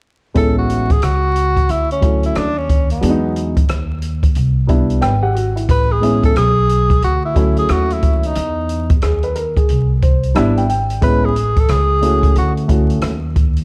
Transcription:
0.34 upright bass A1, grand piano G#3 B3 C#4 E4, tenor saxophone A4, kick, closed hi-hat
0.58 tenor saxophone F#4
0.70 closed hi-hat
0.90 tenor saxophone G#4, kick, closed hi-hat
1.02 upright bass C#2, tenor saxophone F#4, cross-stick, closed hi-hat
1.36 closed hi-hat
1.57 kick, closed hi-hat
1.69 upright bass D2, tenor saxophone E4, closed hi-hat
1.91 tenor saxophone C#4, closed hi-hat
2.00 grand piano F#3 A3 C#4 E4, kick, closed hi-hat
2.23 tenor saxophone E4, closed hi-hat
2.35 upright bass D#2, tenor saxophone D4, cross-stick, closed hi-hat
2.58 tenor saxophone C#4
2.69 kick, closed hi-hat
2.90 tenor saxophone B3, closed hi-hat
3.01 upright bass E2, grand piano F#3 G#3 B3 D4, closed hi-hat
3.10 grand piano D#4
3.36 closed hi-hat
3.57 kick, closed hi-hat
3.68 upright bass D#2, cross-stick, closed hi-hat
4.02 closed hi-hat
4.23 kick, closed hi-hat
4.35 upright bass C2, closed hi-hat
4.67 grand piano G3 B3 D4 E4, kick, closed hi-hat
4.90 closed hi-hat
5.01 upright bass G#1, grand piano B4 G5, cross-stick, closed hi-hat
5.22 grand piano G4 F#5
5.35 grand piano F#4, closed hi-hat
5.56 grand piano E4, closed hi-hat
5.69 upright bass A1, tenor saxophone B4, kick, closed hi-hat
5.92 tenor saxophone G#4
6.01 grand piano G#3 B3 C#4 E4, closed hi-hat
6.23 tenor saxophone A4, kick, closed hi-hat
6.36 upright bass B1, tenor saxophone G#4, cross-stick, closed hi-hat
6.69 closed hi-hat
6.90 kick, closed hi-hat
7.02 upright bass D2, tenor saxophone F#4, closed hi-hat
7.25 tenor saxophone E4
7.35 grand piano F#3 A3 C#4 E4, kick, closed hi-hat
7.57 tenor saxophone G#4, closed hi-hat
7.69 upright bass D#2, tenor saxophone F#4, cross-stick, closed hi-hat
7.90 tenor saxophone E4, closed hi-hat
8.02 kick, closed hi-hat
8.17 tenor saxophone E4
8.23 tenor saxophone D#4, closed hi-hat
8.35 upright bass E2, closed hi-hat
8.69 closed hi-hat
8.90 kick, closed hi-hat
9.02 upright bass D#2, grand piano G#4, cross-stick, closed hi-hat
9.23 grand piano B4, closed hi-hat
9.35 grand piano A#4, closed hi-hat
9.57 grand piano G#4, kick, closed hi-hat
9.69 upright bass C2, closed hi-hat
10.02 grand piano C5, kick, closed hi-hat
10.23 closed hi-hat
10.35 upright bass G#1, grand piano G3 B3 D4 E4 E5, cross-stick, closed hi-hat
10.57 grand piano G5, closed hi-hat
10.69 grand piano G5, closed hi-hat
10.90 closed hi-hat
11.01 upright bass A1, grand piano G#3 B3 C#4 E4, tenor saxophone B4, kick, closed hi-hat
11.25 tenor saxophone G#4
11.36 closed hi-hat
11.56 tenor saxophone A4, kick, closed hi-hat
11.68 upright bass C#2, tenor saxophone G#4, cross-stick, closed hi-hat
12.01 grand piano A3 C#4 E4 F#4, closed hi-hat
12.23 kick, closed hi-hat
12.35 upright bass D2, tenor saxophone F#4, closed hi-hat
12.57 closed hi-hat
12.68 grand piano A3 C#4 E4 F#4, kick, closed hi-hat
12.90 closed hi-hat
13.01 upright bass D#2, cross-stick, closed hi-hat
13.36 kick, closed hi-hat
13.56 closed hi-hat

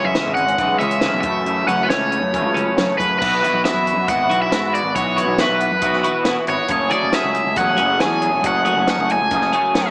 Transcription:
Already playing: clean electric guitar C#3 E3 G#3 C#4
0.04 fingered electric bass F#2, overdriven electric guitar E5
0.14 clean electric guitar C#3 E3 G#3 C#4, snare, closed hi-hat
0.26 fingered electric bass G#1
0.35 clean electric guitar G#3 C#4, overdriven electric guitar F#5, closed hi-hat
0.39 clean electric guitar E3
0.48 closed hi-hat
0.58 fingered electric bass B1, clean electric guitar C#3 E3 G#3 C#4, kick, closed hi-hat
0.79 fingered electric bass C#2, clean electric guitar C#3 G#3 C#4, overdriven electric guitar E5, closed hi-hat
0.83 clean electric guitar E3
0.91 closed hi-hat
1.01 clean electric guitar C#3 E3 G#3 C#4, snare, closed hi-hat
1.13 fingered electric bass B1
1.21 fingered electric bass F#2, clean electric guitar A3 C#4, overdriven electric guitar E5, kick, closed hi-hat
1.25 clean electric guitar F#2 C#3 E3
1.45 clean electric guitar F#2 C#3 E3 A3 C#4, closed hi-hat
1.67 fingered electric bass F#2, clean electric guitar C#3 E3 A3 C#4, overdriven electric guitar F#5, closed hi-hat
1.83 overdriven electric guitar B4
1.89 fingered electric bass C#2, clean electric guitar C#3 E3 A3 C#4, overdriven electric guitar C#5, snare, closed hi-hat
2.10 clean electric guitar E3 A3 C#4, closed hi-hat
2.22 fingered electric bass F#2
2.32 clean electric guitar F#2 C#3 E3 A3 C#4, kick, closed hi-hat
2.44 fingered electric bass C#2
2.54 clean electric guitar C#3 E3 A3 C#4, closed hi-hat
2.76 clean electric guitar C#3 E3 A3 C#4, fingered electric bass F#3, snare, closed hi-hat
2.98 fingered electric bass F#2, overdriven electric guitar B4, kick, closed hi-hat
3.19 fingered electric bass B1, clean electric guitar B2 E3 B3 E4, overdriven electric guitar B4, kick, crash
3.24 clean electric guitar F#4
3.41 clean electric guitar E3 B3 E4 F#4, closed hi-hat
3.53 fingered electric bass B1
3.63 clean electric guitar E3 B3 E4 F#4, overdriven electric guitar E5, snare, closed hi-hat
3.74 fingered electric bass F#2
3.87 closed hi-hat
3.96 fingered electric bass F#2
4.08 fingered electric bass G#1, clean electric guitar B2 E3 B3 E4 F#4, overdriven electric guitar F#5, kick, closed hi-hat
4.29 fingered electric bass B1, clean electric guitar E3 E4 F#4, closed hi-hat
4.33 clean electric guitar B3
4.42 overdriven electric guitar E5
4.51 fingered electric bass G#2, clean electric guitar E3 B3 E4 F#4, snare, closed hi-hat
4.73 clean electric guitar B3 E4 F#4, overdriven electric guitar D5, closed hi-hat
4.83 fingered electric bass G#1
4.95 fingered electric bass B1, clean electric guitar B2 E3 B3 E4 F#4, overdriven electric guitar C#5, kick, closed hi-hat
5.17 clean electric guitar E3 B3 E4 F#4, closed hi-hat
5.27 fingered electric bass B1
5.38 clean electric guitar E3 B3 E4 F#4, overdriven electric guitar B4, snare, closed hi-hat
5.49 fingered electric bass B1
5.60 closed hi-hat
5.71 fingered electric bass F#2
5.81 fingered electric bass B1, clean electric guitar B2 E3 B3 E4 F#4, kick, closed hi-hat
5.93 snare
6.04 clean electric guitar E3 B3 E4 F#4, closed hi-hat
6.25 fingered electric bass B2, clean electric guitar E3 B3 E4, snare, closed hi-hat
6.29 clean electric guitar F#4
6.47 fingered electric bass G#1, clean electric guitar E4 F#4, overdriven electric guitar C#5, closed hi-hat
6.51 clean electric guitar B3
6.68 fingered electric bass F#1, clean electric guitar F#2 C#3 F#3 A3 C#4 G#4, overdriven electric guitar C#5, kick, closed hi-hat
6.91 clean electric guitar A3 C#4 G#4, overdriven electric guitar D5, closed hi-hat
6.95 clean electric guitar F#3
7.03 fingered electric bass F#1
7.13 clean electric guitar F#3 A3 C#4 G#4, overdriven electric guitar E5, snare, closed hi-hat
7.24 fingered electric bass C#2
7.35 closed hi-hat
7.46 fingered electric bass C#2
7.56 fingered electric bass E1, clean electric guitar F#2 C#3 F#3 A3 C#4 G#4, overdriven electric guitar F#5, kick, closed hi-hat
7.77 fingered electric bass F#1, clean electric guitar F#3 A3 C#4 G#4, closed hi-hat
7.99 fingered electric bass E2, clean electric guitar F#3 A3 C#4 G#4, overdriven electric guitar G#5, snare, closed hi-hat
8.22 clean electric guitar F#3 A3 C#4 G#4, closed hi-hat
8.33 fingered electric bass E1
8.43 fingered electric bass F#1, clean electric guitar F#2 C#3 F#3 A3 C#4 G#4, overdriven electric guitar F#5, kick, closed hi-hat
8.64 clean electric guitar F#3 A3 C#4 G#4, closed hi-hat
8.77 fingered electric bass F#1
8.87 clean electric guitar F#3 A3 C#4 G#4, overdriven electric guitar F#5, snare, closed hi-hat
8.99 fingered electric bass F#1
9.09 overdriven electric guitar G#5, closed hi-hat
9.21 fingered electric bass C#2
9.31 fingered electric bass F#1, clean electric guitar F#2 C#3 F#3 A3 C#4 G#4, kick, closed hi-hat
9.41 snare
9.52 clean electric guitar F#3 A3 C#4 G#4, closed hi-hat
9.74 fingered electric bass F#2, clean electric guitar F#3 A3 C#4 G#4, snare, closed hi-hat

